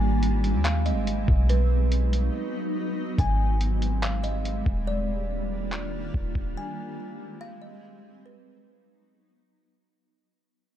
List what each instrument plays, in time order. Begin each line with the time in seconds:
Already playing: 808-style bass G#1, ambient pad G3 G#3 C4, kalimba G#5
0.23 closed hi-hat
0.44 closed hi-hat
0.54 808-style bass D#2
0.65 kalimba F5, clap, closed hi-hat
0.86 kalimba D#5, closed hi-hat
0.91 808-style bass G#1
1.07 closed hi-hat
1.28 808-style bass B1, kick
1.49 ambient pad F#3 B3 D#4, kalimba B4, closed hi-hat
1.92 closed hi-hat
2.13 closed hi-hat
3.18 808-style bass G#1, ambient pad G3 G#3 C4, kalimba G#5, kick, closed hi-hat
3.61 closed hi-hat
3.82 closed hi-hat
4.02 kalimba F5, clap, closed hi-hat
4.24 kalimba D#5, closed hi-hat
4.45 closed hi-hat
4.66 808-style bass D#1, kick
4.87 ambient pad D#3 A#3 D4 F4, kalimba D5
5.72 clap
6.14 808-style bass D#1, kick
6.35 808-style bass D#1, kick
6.57 ambient pad G#3 C4, kalimba G#5
7.41 kalimba F5
7.62 kalimba D#5
8.26 ambient pad F#3 B3 D#4, kalimba B4